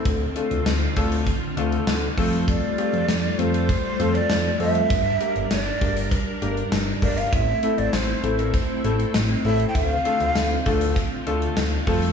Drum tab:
HH |x-xxx-xxx-xxx-ox|x-xxx-xxx-xxx-ox|x-xxx-xxx-xxx-ox|x-xxx-xxx-xxx-ox|
SD |----o-------o---|----o-------o---|----o-------o---|----o-------o---|
BD |o-----o-o-----o-|o-------o-------|o-----o-o-----o-|o-------o-------|

HH |x-xxx-xxx-xxx-ox|
SD |----o-------o---|
BD |o-----o-o-----o-|